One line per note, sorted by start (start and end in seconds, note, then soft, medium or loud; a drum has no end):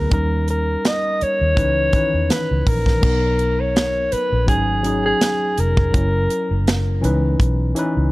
0.00 0.13 F#3 medium
0.00 0.14 B3 medium
0.00 0.12 D#4 medium
0.00 0.13 G#4 medium
0.00 0.13 A#4 medium
0.09 0.75 D#2 medium
0.09 1.06 G3 medium
0.09 1.06 C#4 medium
0.09 1.07 D#4 medium
0.09 1.08 A#4 medium
0.09 kick loud
0.09 closed hi-hat medium
0.13 0.46 A#4 medium
0.48 0.89 A#4 medium
0.48 closed hi-hat medium
0.85 1.24 D#5 medium
0.85 snare loud
0.85 closed hi-hat medium
1.21 2.31 C#5 loud
1.21 muted fingered electric bass stroke soft
1.21 closed hi-hat medium
1.41 1.57 D#2 medium
1.55 1.89 C#2 medium
1.55 1.86 E3 medium
1.55 1.86 C#4 medium
1.55 1.87 D#4 medium
1.55 1.88 B4 medium
1.55 kick medium
1.55 closed hi-hat medium
1.92 2.00 D#3 soft
1.92 2.64 C#4 medium
1.92 2.65 D#4 medium
1.92 2.65 B4 medium
1.92 muted fingered electric bass stroke soft
1.92 kick medium
1.92 closed hi-hat medium
1.98 2.67 E3 medium
2.14 2.28 E2 medium
2.30 2.70 B4 medium
2.30 snare medium
2.30 closed hi-hat medium
2.51 2.65 C#2 medium
2.67 2.99 A#1 medium
2.67 3.62 A#4 medium
2.67 kick medium
2.67 open hi-hat medium
2.86 kick medium
2.86 snare soft
3.01 4.09 B1 medium
3.01 3.97 F#3 medium
3.01 3.98 B3 medium
3.01 3.99 D#4 medium
3.01 3.99 A#4 medium
3.01 kick loud
3.01 crash medium
3.39 closed hi-hat medium
3.60 4.14 C#5 medium
3.76 snare loud
3.76 closed hi-hat medium
4.12 4.48 B4 medium
4.12 muted fingered electric bass stroke soft
4.12 closed hi-hat medium
4.32 4.48 A#1 medium
4.46 5.12 G#1 medium
4.46 4.77 F#3 medium
4.46 4.78 C#4 medium
4.46 4.79 D#4 medium
4.46 5.01 G#4 medium
4.46 4.79 G#4 medium
4.46 kick medium
4.46 closed hi-hat medium
4.83 5.55 F#3 medium
4.83 5.55 C#4 medium
4.83 5.56 D#4 medium
4.83 5.57 G#4 medium
4.83 closed hi-hat medium
5.06 5.61 G#4 medium
5.21 snare medium
5.21 closed hi-hat medium
5.58 5.90 F1 medium
5.58 6.68 A#4 medium
5.58 closed hi-hat medium
5.77 kick medium
5.92 6.26 F#1 loud
5.92 6.89 F#3 medium
5.92 6.89 C#4 medium
5.92 6.90 E4 medium
5.92 6.91 A#4 medium
5.92 kick loud
5.92 closed hi-hat medium
6.30 closed hi-hat medium
6.51 7.05 F#1 medium
6.67 snare loud
6.67 closed hi-hat medium
7.01 7.36 C#2 medium
7.01 7.62 E3 medium
7.01 7.63 C#4 medium
7.01 7.63 D#4 medium
7.01 7.64 B4 medium
7.01 closed hi-hat medium
7.40 7.72 B1 medium
7.40 kick medium
7.40 closed hi-hat medium
7.75 8.12 E3 medium
7.75 8.12 C#4 medium
7.75 8.12 D#4 medium
7.75 8.12 B4 medium
7.75 closed hi-hat medium
7.97 8.11 C#2 medium